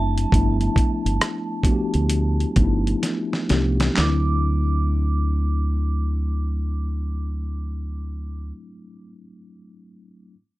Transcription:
Already playing: F#1 F#3 A3 C4 D4 E4 A5
0.18 closed hi-hat
0.32 G1 F3 A3 B3 D4 E4, kick, closed hi-hat
0.61 closed hi-hat
0.76 muted fingered electric bass stroke, kick, closed hi-hat
1.06 G1, closed hi-hat
1.21 cross-stick, closed hi-hat
1.63 F3 A3 B3 D4 F#4, muted fingered electric bass stroke, kick, closed hi-hat
1.73 G4
1.94 D2, closed hi-hat
2.10 closed hi-hat
2.40 closed hi-hat
2.55 G1 F3 A3 B3 D4 D#4, kick, closed hi-hat
2.64 E4
2.87 closed hi-hat
3.03 snare, closed hi-hat
3.33 snare
3.49 C2 F3 A3 B3 D4 G4, snare, closed hi-hat
3.80 snare, closed hi-hat
3.93 F#3 A3 C4, clap
3.98 D2 D4 E4 D6, snare

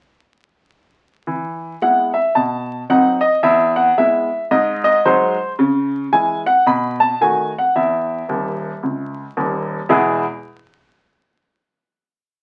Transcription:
1.27 E3
1.82 G#3 B3 E4 F#5
2.14 E5
2.35 B2 A5
2.90 F#3 C4 D#4 F#5
3.21 D#5
3.43 E2 E5
3.76 F#5
3.98 G#3 B3 E4 E5
4.51 G#2 D#5
4.84 D#5
5.05 F#3 G#3 D#4 C5
5.59 C#3
6.12 E3 G#3 E4 G#5
6.46 F#5
6.66 B2 B5
7.00 A5
7.21 D#3 A3 F#4 G#5
7.58 F#5
7.76 E2 E5
8.28 D#1 D#2
8.83 C#2
9.37 D#1 D#2
9.89 E2 B2 G#3 B3 E4 G#4

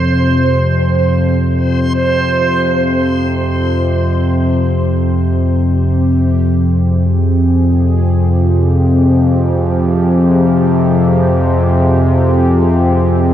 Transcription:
Already playing: F2 C3 C5
1.38 F2 C3 F3
3.05 C4
4.93 G4
6.51 G#4

